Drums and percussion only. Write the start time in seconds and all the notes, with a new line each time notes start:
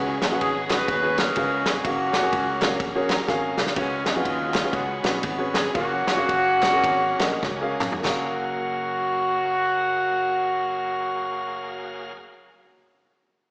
0.22 snare, clap, ride
0.41 kick, ride
0.70 kick, snare, clap, ride
0.88 kick, ride
1.18 snare, clap, ride
1.36 kick, ride
1.66 snare, clap, ride
1.85 kick, ride
2.13 snare, clap, ride
2.32 kick, ride
2.61 kick, snare, clap, ride
2.80 kick, ride
3.09 snare, clap, ride
3.28 kick, snare
3.58 snare, clap
3.67 snare
3.76 kick, ride
4.06 snare, clap, ride
4.25 kick, ride
4.54 kick, snare, clap, ride
4.73 kick, ride
5.04 snare, clap, ride
5.23 kick, ride
5.54 snare, clap, ride
5.75 kick, ride
6.07 snare, clap, ride
6.29 kick, ride
6.63 kick, snare, clap, ride
6.84 kick, ride
7.19 snare, clap, ride
7.43 kick, snare
7.80 clap, mid tom
7.92 floor tom
8.05 kick, snare, clap, splash